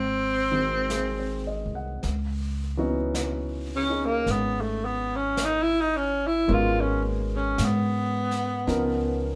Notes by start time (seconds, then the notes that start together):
Already playing: G#1 C4
0.51 D#3 G#3 C4 F#4
0.90 G#4, brush sweep, snare, hi-hat pedal
1.19 C5
1.47 D#5
1.66 C2
1.75 F#5
2.03 C#2, brush sweep, snare
2.77 E3 B3 C#4 D#4 F#4
3.15 brush sweep, snare, hi-hat pedal
3.76 C#4
3.89 C#4 D#4 G#4
4.06 A#3
4.26 G#1, brush sweep, snare
4.32 B3
4.61 A3
4.85 B3
5.16 C#4
5.37 brush sweep, snare, hi-hat pedal
5.45 D#4
5.62 E4
5.81 D#4
5.96 C#4
6.27 E4
6.48 G#1 G#3 B3 C#4 F#4 A#4, brush sweep
6.53 F4
6.80 C#4
7.05 A#3
7.36 C#4
7.58 G#2, brush sweep, snare, hi-hat pedal
7.64 B3
8.31 snare
8.67 C#2 F3 B3 C#4 D#4 A#4, brush sweep, snare